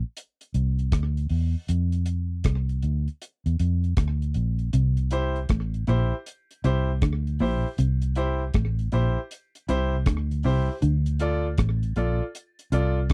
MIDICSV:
0, 0, Header, 1, 5, 480
1, 0, Start_track
1, 0, Tempo, 761421
1, 1063, Time_signature, 4, 2, 24, 8
1, 8279, End_track
2, 0, Start_track
2, 0, Title_t, "Grand piano"
2, 0, Program_c, 0, 0
2, 3224, Note_on_c, 0, 64, 82
2, 3228, Note_on_c, 0, 67, 77
2, 3232, Note_on_c, 0, 72, 103
2, 3382, Note_off_c, 0, 64, 0
2, 3384, Note_off_c, 0, 67, 0
2, 3386, Note_off_c, 0, 72, 0
2, 3705, Note_on_c, 0, 64, 89
2, 3709, Note_on_c, 0, 67, 75
2, 3713, Note_on_c, 0, 72, 98
2, 3863, Note_off_c, 0, 64, 0
2, 3865, Note_off_c, 0, 67, 0
2, 3866, Note_off_c, 0, 72, 0
2, 4186, Note_on_c, 0, 64, 90
2, 4190, Note_on_c, 0, 67, 83
2, 4194, Note_on_c, 0, 72, 101
2, 4343, Note_off_c, 0, 64, 0
2, 4345, Note_off_c, 0, 67, 0
2, 4347, Note_off_c, 0, 72, 0
2, 4667, Note_on_c, 0, 64, 87
2, 4670, Note_on_c, 0, 67, 81
2, 4674, Note_on_c, 0, 72, 99
2, 4823, Note_off_c, 0, 64, 0
2, 4825, Note_off_c, 0, 67, 0
2, 4827, Note_off_c, 0, 72, 0
2, 5145, Note_on_c, 0, 64, 95
2, 5148, Note_on_c, 0, 67, 81
2, 5153, Note_on_c, 0, 72, 96
2, 5302, Note_off_c, 0, 64, 0
2, 5304, Note_off_c, 0, 67, 0
2, 5306, Note_off_c, 0, 72, 0
2, 5626, Note_on_c, 0, 64, 89
2, 5630, Note_on_c, 0, 67, 79
2, 5634, Note_on_c, 0, 72, 102
2, 5783, Note_off_c, 0, 64, 0
2, 5785, Note_off_c, 0, 67, 0
2, 5786, Note_off_c, 0, 72, 0
2, 6105, Note_on_c, 0, 64, 92
2, 6109, Note_on_c, 0, 67, 82
2, 6113, Note_on_c, 0, 72, 107
2, 6262, Note_off_c, 0, 64, 0
2, 6264, Note_off_c, 0, 67, 0
2, 6266, Note_off_c, 0, 72, 0
2, 6583, Note_on_c, 0, 64, 89
2, 6588, Note_on_c, 0, 67, 86
2, 6591, Note_on_c, 0, 72, 96
2, 6733, Note_off_c, 0, 67, 0
2, 6733, Note_off_c, 0, 72, 0
2, 6741, Note_off_c, 0, 64, 0
2, 6742, Note_on_c, 0, 67, 25
2, 6743, Note_on_c, 0, 72, 27
2, 6774, Note_off_c, 0, 67, 0
2, 6774, Note_off_c, 0, 72, 0
2, 7063, Note_on_c, 0, 65, 90
2, 7067, Note_on_c, 0, 69, 85
2, 7070, Note_on_c, 0, 74, 108
2, 7220, Note_off_c, 0, 65, 0
2, 7222, Note_off_c, 0, 69, 0
2, 7224, Note_off_c, 0, 74, 0
2, 7542, Note_on_c, 0, 65, 87
2, 7546, Note_on_c, 0, 69, 83
2, 7549, Note_on_c, 0, 74, 90
2, 7699, Note_off_c, 0, 65, 0
2, 7701, Note_off_c, 0, 69, 0
2, 7703, Note_off_c, 0, 74, 0
2, 8020, Note_on_c, 0, 65, 93
2, 8024, Note_on_c, 0, 69, 84
2, 8028, Note_on_c, 0, 74, 101
2, 8178, Note_off_c, 0, 65, 0
2, 8180, Note_off_c, 0, 69, 0
2, 8182, Note_off_c, 0, 74, 0
2, 8279, End_track
3, 0, Start_track
3, 0, Title_t, "Clean electric guitar"
3, 0, Program_c, 1, 27
3, 2983, Note_on_c, 1, 48, 75
3, 3127, Note_off_c, 1, 48, 0
3, 3465, Note_on_c, 1, 45, 77
3, 3609, Note_off_c, 1, 45, 0
3, 3703, Note_on_c, 1, 46, 72
3, 3796, Note_off_c, 1, 46, 0
3, 4188, Note_on_c, 1, 48, 74
3, 4331, Note_off_c, 1, 48, 0
3, 4426, Note_on_c, 1, 50, 72
3, 4570, Note_off_c, 1, 50, 0
3, 4667, Note_on_c, 1, 46, 85
3, 4759, Note_off_c, 1, 46, 0
3, 4908, Note_on_c, 1, 48, 81
3, 5051, Note_off_c, 1, 48, 0
3, 5386, Note_on_c, 1, 45, 80
3, 5530, Note_off_c, 1, 45, 0
3, 5625, Note_on_c, 1, 46, 71
3, 5717, Note_off_c, 1, 46, 0
3, 6107, Note_on_c, 1, 48, 90
3, 6250, Note_off_c, 1, 48, 0
3, 6344, Note_on_c, 1, 50, 70
3, 6488, Note_off_c, 1, 50, 0
3, 6585, Note_on_c, 1, 48, 77
3, 6677, Note_off_c, 1, 48, 0
3, 6821, Note_on_c, 1, 50, 79
3, 6966, Note_off_c, 1, 50, 0
3, 7300, Note_on_c, 1, 45, 77
3, 7445, Note_off_c, 1, 45, 0
3, 7541, Note_on_c, 1, 46, 63
3, 7634, Note_off_c, 1, 46, 0
3, 8018, Note_on_c, 1, 48, 78
3, 8163, Note_off_c, 1, 48, 0
3, 8259, Note_on_c, 1, 50, 73
3, 8279, Note_off_c, 1, 50, 0
3, 8279, End_track
4, 0, Start_track
4, 0, Title_t, "Fingered electric bass"
4, 0, Program_c, 2, 33
4, 343, Note_on_c, 2, 36, 84
4, 573, Note_off_c, 2, 36, 0
4, 583, Note_on_c, 2, 38, 100
4, 813, Note_off_c, 2, 38, 0
4, 822, Note_on_c, 2, 40, 89
4, 971, Note_off_c, 2, 40, 0
4, 1065, Note_on_c, 2, 41, 98
4, 1524, Note_off_c, 2, 41, 0
4, 1544, Note_on_c, 2, 36, 91
4, 1774, Note_off_c, 2, 36, 0
4, 1785, Note_on_c, 2, 38, 91
4, 1933, Note_off_c, 2, 38, 0
4, 2180, Note_on_c, 2, 40, 76
4, 2262, Note_off_c, 2, 40, 0
4, 2267, Note_on_c, 2, 41, 95
4, 2496, Note_off_c, 2, 41, 0
4, 2505, Note_on_c, 2, 38, 85
4, 2735, Note_off_c, 2, 38, 0
4, 2746, Note_on_c, 2, 34, 84
4, 2975, Note_off_c, 2, 34, 0
4, 2986, Note_on_c, 2, 36, 98
4, 3445, Note_off_c, 2, 36, 0
4, 3465, Note_on_c, 2, 33, 92
4, 3695, Note_off_c, 2, 33, 0
4, 3706, Note_on_c, 2, 34, 91
4, 3854, Note_off_c, 2, 34, 0
4, 4188, Note_on_c, 2, 36, 89
4, 4416, Note_off_c, 2, 36, 0
4, 4427, Note_on_c, 2, 38, 97
4, 4656, Note_off_c, 2, 38, 0
4, 4668, Note_on_c, 2, 34, 93
4, 4814, Note_off_c, 2, 34, 0
4, 4908, Note_on_c, 2, 36, 97
4, 5366, Note_off_c, 2, 36, 0
4, 5388, Note_on_c, 2, 33, 95
4, 5616, Note_off_c, 2, 33, 0
4, 5627, Note_on_c, 2, 34, 80
4, 5774, Note_off_c, 2, 34, 0
4, 6108, Note_on_c, 2, 36, 95
4, 6336, Note_off_c, 2, 36, 0
4, 6346, Note_on_c, 2, 38, 96
4, 6575, Note_off_c, 2, 38, 0
4, 6587, Note_on_c, 2, 36, 82
4, 6733, Note_off_c, 2, 36, 0
4, 6825, Note_on_c, 2, 38, 98
4, 7283, Note_off_c, 2, 38, 0
4, 7302, Note_on_c, 2, 33, 92
4, 7532, Note_off_c, 2, 33, 0
4, 7543, Note_on_c, 2, 34, 82
4, 7690, Note_off_c, 2, 34, 0
4, 8019, Note_on_c, 2, 36, 86
4, 8249, Note_off_c, 2, 36, 0
4, 8259, Note_on_c, 2, 38, 93
4, 8279, Note_off_c, 2, 38, 0
4, 8279, End_track
5, 0, Start_track
5, 0, Title_t, "Drums"
5, 105, Note_on_c, 9, 42, 91
5, 168, Note_off_c, 9, 42, 0
5, 258, Note_on_c, 9, 42, 59
5, 321, Note_off_c, 9, 42, 0
5, 342, Note_on_c, 9, 42, 64
5, 405, Note_off_c, 9, 42, 0
5, 496, Note_on_c, 9, 42, 33
5, 559, Note_off_c, 9, 42, 0
5, 580, Note_on_c, 9, 42, 97
5, 582, Note_on_c, 9, 36, 117
5, 588, Note_on_c, 9, 37, 109
5, 643, Note_off_c, 9, 42, 0
5, 645, Note_off_c, 9, 36, 0
5, 651, Note_off_c, 9, 37, 0
5, 739, Note_on_c, 9, 42, 43
5, 802, Note_off_c, 9, 42, 0
5, 816, Note_on_c, 9, 46, 83
5, 879, Note_off_c, 9, 46, 0
5, 1061, Note_on_c, 9, 42, 91
5, 1125, Note_off_c, 9, 42, 0
5, 1212, Note_on_c, 9, 42, 51
5, 1275, Note_off_c, 9, 42, 0
5, 1296, Note_on_c, 9, 42, 82
5, 1359, Note_off_c, 9, 42, 0
5, 1539, Note_on_c, 9, 42, 86
5, 1543, Note_on_c, 9, 36, 100
5, 1549, Note_on_c, 9, 37, 101
5, 1602, Note_off_c, 9, 42, 0
5, 1606, Note_off_c, 9, 36, 0
5, 1612, Note_off_c, 9, 37, 0
5, 1698, Note_on_c, 9, 42, 48
5, 1761, Note_off_c, 9, 42, 0
5, 1781, Note_on_c, 9, 42, 73
5, 1844, Note_off_c, 9, 42, 0
5, 1940, Note_on_c, 9, 42, 36
5, 2003, Note_off_c, 9, 42, 0
5, 2027, Note_on_c, 9, 42, 91
5, 2090, Note_off_c, 9, 42, 0
5, 2181, Note_on_c, 9, 42, 55
5, 2244, Note_off_c, 9, 42, 0
5, 2266, Note_on_c, 9, 42, 72
5, 2329, Note_off_c, 9, 42, 0
5, 2419, Note_on_c, 9, 42, 33
5, 2483, Note_off_c, 9, 42, 0
5, 2501, Note_on_c, 9, 42, 96
5, 2504, Note_on_c, 9, 36, 117
5, 2509, Note_on_c, 9, 37, 107
5, 2564, Note_off_c, 9, 42, 0
5, 2567, Note_off_c, 9, 36, 0
5, 2572, Note_off_c, 9, 37, 0
5, 2661, Note_on_c, 9, 42, 44
5, 2724, Note_off_c, 9, 42, 0
5, 2738, Note_on_c, 9, 42, 76
5, 2801, Note_off_c, 9, 42, 0
5, 2892, Note_on_c, 9, 42, 34
5, 2955, Note_off_c, 9, 42, 0
5, 2982, Note_on_c, 9, 42, 90
5, 3045, Note_off_c, 9, 42, 0
5, 3133, Note_on_c, 9, 42, 49
5, 3196, Note_off_c, 9, 42, 0
5, 3219, Note_on_c, 9, 42, 79
5, 3282, Note_off_c, 9, 42, 0
5, 3377, Note_on_c, 9, 42, 33
5, 3440, Note_off_c, 9, 42, 0
5, 3460, Note_on_c, 9, 42, 85
5, 3465, Note_on_c, 9, 36, 111
5, 3470, Note_on_c, 9, 37, 93
5, 3523, Note_off_c, 9, 42, 0
5, 3528, Note_off_c, 9, 36, 0
5, 3533, Note_off_c, 9, 37, 0
5, 3619, Note_on_c, 9, 42, 50
5, 3682, Note_off_c, 9, 42, 0
5, 3701, Note_on_c, 9, 42, 73
5, 3709, Note_on_c, 9, 37, 68
5, 3764, Note_off_c, 9, 42, 0
5, 3772, Note_off_c, 9, 37, 0
5, 3948, Note_on_c, 9, 42, 93
5, 4011, Note_off_c, 9, 42, 0
5, 4102, Note_on_c, 9, 42, 55
5, 4165, Note_off_c, 9, 42, 0
5, 4187, Note_on_c, 9, 42, 72
5, 4250, Note_off_c, 9, 42, 0
5, 4423, Note_on_c, 9, 42, 96
5, 4426, Note_on_c, 9, 36, 118
5, 4431, Note_on_c, 9, 37, 107
5, 4486, Note_off_c, 9, 42, 0
5, 4489, Note_off_c, 9, 36, 0
5, 4494, Note_off_c, 9, 37, 0
5, 4583, Note_on_c, 9, 42, 45
5, 4646, Note_off_c, 9, 42, 0
5, 4660, Note_on_c, 9, 46, 75
5, 4723, Note_off_c, 9, 46, 0
5, 4905, Note_on_c, 9, 42, 96
5, 4968, Note_off_c, 9, 42, 0
5, 5053, Note_on_c, 9, 42, 54
5, 5116, Note_off_c, 9, 42, 0
5, 5140, Note_on_c, 9, 42, 82
5, 5203, Note_off_c, 9, 42, 0
5, 5381, Note_on_c, 9, 42, 81
5, 5386, Note_on_c, 9, 36, 112
5, 5391, Note_on_c, 9, 37, 99
5, 5444, Note_off_c, 9, 42, 0
5, 5449, Note_off_c, 9, 36, 0
5, 5454, Note_off_c, 9, 37, 0
5, 5540, Note_on_c, 9, 42, 52
5, 5603, Note_off_c, 9, 42, 0
5, 5622, Note_on_c, 9, 42, 75
5, 5685, Note_off_c, 9, 42, 0
5, 5869, Note_on_c, 9, 42, 89
5, 5932, Note_off_c, 9, 42, 0
5, 6021, Note_on_c, 9, 42, 53
5, 6084, Note_off_c, 9, 42, 0
5, 6106, Note_on_c, 9, 42, 68
5, 6169, Note_off_c, 9, 42, 0
5, 6342, Note_on_c, 9, 42, 103
5, 6344, Note_on_c, 9, 36, 118
5, 6350, Note_on_c, 9, 37, 110
5, 6405, Note_off_c, 9, 42, 0
5, 6407, Note_off_c, 9, 36, 0
5, 6413, Note_off_c, 9, 37, 0
5, 6501, Note_on_c, 9, 42, 47
5, 6564, Note_off_c, 9, 42, 0
5, 6577, Note_on_c, 9, 46, 76
5, 6640, Note_off_c, 9, 46, 0
5, 6821, Note_on_c, 9, 42, 91
5, 6884, Note_off_c, 9, 42, 0
5, 6972, Note_on_c, 9, 42, 53
5, 7035, Note_off_c, 9, 42, 0
5, 7057, Note_on_c, 9, 42, 86
5, 7120, Note_off_c, 9, 42, 0
5, 7297, Note_on_c, 9, 42, 82
5, 7302, Note_on_c, 9, 36, 107
5, 7307, Note_on_c, 9, 37, 100
5, 7360, Note_off_c, 9, 42, 0
5, 7365, Note_off_c, 9, 36, 0
5, 7370, Note_off_c, 9, 37, 0
5, 7457, Note_on_c, 9, 42, 53
5, 7520, Note_off_c, 9, 42, 0
5, 7538, Note_on_c, 9, 42, 75
5, 7601, Note_off_c, 9, 42, 0
5, 7784, Note_on_c, 9, 42, 87
5, 7847, Note_off_c, 9, 42, 0
5, 7936, Note_on_c, 9, 42, 53
5, 7999, Note_off_c, 9, 42, 0
5, 8019, Note_on_c, 9, 42, 67
5, 8082, Note_off_c, 9, 42, 0
5, 8256, Note_on_c, 9, 42, 96
5, 8259, Note_on_c, 9, 36, 113
5, 8279, Note_off_c, 9, 36, 0
5, 8279, Note_off_c, 9, 42, 0
5, 8279, End_track
0, 0, End_of_file